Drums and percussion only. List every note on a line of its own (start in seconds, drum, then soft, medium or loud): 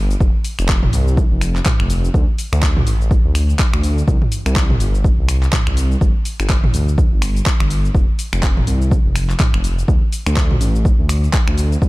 0.11 shaker medium
0.21 kick loud
0.21 shaker soft
0.44 open hi-hat medium
0.44 shaker medium
0.59 finger snap medium
0.59 shaker medium
0.69 kick loud
0.69 clap loud
0.69 shaker soft
0.83 mid tom loud
0.93 open hi-hat medium
0.93 shaker medium
1.08 shaker medium
1.17 kick loud
1.17 shaker soft
1.41 finger snap medium
1.41 open hi-hat medium
1.41 shaker medium
1.56 clap soft
1.56 shaker medium
1.66 kick loud
1.66 clap loud
1.66 mid tom medium
1.66 shaker soft
1.80 finger snap medium
1.90 open hi-hat medium
1.90 shaker medium
2.05 shaker soft
2.14 kick loud
2.14 shaker soft
2.38 open hi-hat medium
2.38 shaker medium
2.53 finger snap medium
2.53 shaker medium
2.63 kick loud
2.63 clap loud
2.63 shaker soft
2.77 mid tom medium
2.87 open hi-hat medium
2.87 shaker medium
3.01 shaker soft
3.11 kick loud
3.11 shaker soft
3.35 finger snap medium
3.35 open hi-hat medium
3.35 shaker medium
3.50 shaker medium
3.59 kick loud
3.59 clap loud
3.59 shaker soft
3.74 finger snap medium
3.83 open hi-hat medium
3.83 shaker medium
3.98 shaker soft
4.08 kick loud
4.08 shaker soft
4.22 mid tom medium
4.32 open hi-hat loud
4.32 shaker medium
4.46 finger snap medium
4.46 shaker medium
4.56 kick loud
4.56 clap loud
4.56 shaker soft
4.70 mid tom medium
4.80 open hi-hat medium
4.80 shaker medium
4.95 shaker medium
5.04 kick loud
5.04 shaker soft
5.29 finger snap medium
5.29 open hi-hat loud
5.29 shaker medium
5.43 clap soft
5.43 shaker medium
5.53 kick loud
5.53 clap loud
5.53 mid tom medium
5.53 shaker soft
5.67 finger snap loud
5.77 open hi-hat medium
5.77 shaker medium
5.91 shaker medium
6.01 kick loud
6.01 shaker soft
6.25 open hi-hat medium
6.25 shaker loud
6.40 finger snap loud
6.40 shaker medium
6.50 kick loud
6.50 clap loud
6.50 shaker soft
6.64 mid tom medium
6.74 open hi-hat medium
6.74 shaker medium
6.88 shaker medium
6.98 kick loud
6.98 shaker soft
7.22 finger snap medium
7.22 open hi-hat loud
7.22 shaker medium
7.37 shaker medium
7.46 kick loud
7.46 clap loud
7.60 finger snap loud
7.70 open hi-hat medium
7.70 shaker medium
7.85 shaker medium
7.95 kick loud
7.95 shaker soft
8.19 open hi-hat medium
8.19 shaker loud
8.33 finger snap loud
8.33 shaker medium
8.43 kick loud
8.43 clap loud
8.43 shaker soft
8.57 mid tom medium
8.67 open hi-hat medium
8.67 shaker loud
8.82 shaker medium
8.91 kick loud
8.91 shaker soft
9.16 finger snap medium
9.16 open hi-hat medium
9.16 shaker loud
9.30 clap soft
9.30 shaker medium
9.40 kick loud
9.40 clap loud
9.40 mid tom medium
9.40 shaker soft
9.54 finger snap loud
9.64 open hi-hat medium
9.64 shaker medium
9.79 shaker medium
9.88 kick loud
9.88 shaker soft
10.12 open hi-hat medium
10.12 shaker loud
10.27 finger snap loud
10.27 shaker medium
10.37 kick loud
10.37 clap medium
10.37 shaker soft
10.51 mid tom medium
10.61 open hi-hat medium
10.61 shaker loud
10.75 shaker medium
10.85 kick loud
10.85 shaker soft
11.09 finger snap medium
11.09 open hi-hat medium
11.09 shaker loud
11.24 shaker medium
11.33 kick loud
11.33 clap loud
11.33 shaker soft
11.48 finger snap loud
11.58 open hi-hat medium
11.58 shaker loud
11.72 shaker medium
11.82 kick loud
11.82 shaker soft